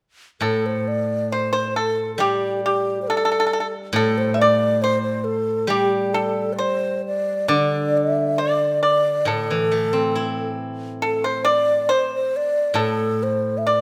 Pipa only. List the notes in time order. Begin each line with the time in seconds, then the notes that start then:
0.42 A4
1.32 C5
1.53 C5
1.76 A4
2.20 G4
2.66 G4
3.10 A4
3.17 A4
3.25 A4
3.32 A4
3.40 A4
3.47 A4
3.53 A4
3.60 A4
3.96 A4
4.34 E5
4.41 D5
4.84 C5
5.70 G4
6.14 A4
6.59 C5
7.48 D5
8.38 D5
8.83 D5
9.28 A4
11.02 A4
11.24 C5
11.45 D5
11.89 C5
12.75 A4
13.67 D5